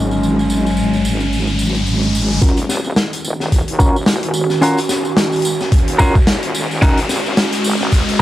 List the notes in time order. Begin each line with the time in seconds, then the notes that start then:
Already playing: G#1 F#3 G#3 C#4 D#4 F#4 A#4, riser
0.11 tambourine
0.23 tambourine
0.39 tambourine
0.50 tambourine
0.67 tambourine
0.77 tambourine
0.93 tambourine
1.05 tambourine
1.20 tambourine
1.33 tambourine
1.47 tambourine
1.59 tambourine
1.75 tambourine
1.87 tambourine
2.03 tambourine
2.15 tambourine
2.30 tambourine
2.41 D#1 D#3 C#4 F4 F#4 A#4, kick, closed hi-hat, tambourine, riser
2.57 closed hi-hat, tambourine
2.69 snare, tambourine
2.84 tambourine
2.96 snare, closed hi-hat, tambourine
3.13 closed hi-hat, tambourine
3.24 D#1, tambourine
3.40 snare, tambourine
3.52 kick, closed hi-hat, tambourine
3.68 D#2, closed hi-hat
3.79 C#4 F4 F#4 A#4, kick, tambourine
3.95 D#1, tambourine
4.06 snare, closed hi-hat, tambourine
4.23 closed hi-hat
4.34 tambourine
4.50 snare, tambourine
4.61 C#4 F4 F#4 A#4, closed hi-hat, tambourine
4.77 closed hi-hat, tambourine
4.89 snare, tambourine
5.05 tambourine
5.17 snare, closed hi-hat, tambourine
5.32 closed hi-hat, tambourine
5.36 closed hi-hat
5.39 closed hi-hat
5.42 closed hi-hat, tambourine
5.61 snare, tambourine
5.72 kick, closed hi-hat, tambourine
5.88 D#2, closed hi-hat
5.99 C#4 F4 F#4 A#4, kick, tambourine
6.15 kick, tambourine
6.27 snare, closed hi-hat, tambourine
6.43 D#1, closed hi-hat
6.54 tambourine
6.70 D#1, tambourine
6.82 G#1 G#3 C#4 D#4 F#4 A#4, kick, closed hi-hat, tambourine
6.97 closed hi-hat, tambourine
7.09 snare, tambourine
7.26 tambourine
7.37 snare, closed hi-hat, tambourine
7.52 closed hi-hat, tambourine
7.64 G#1, tambourine
7.80 snare, tambourine
7.92 kick, closed hi-hat, tambourine
8.08 G#1, closed hi-hat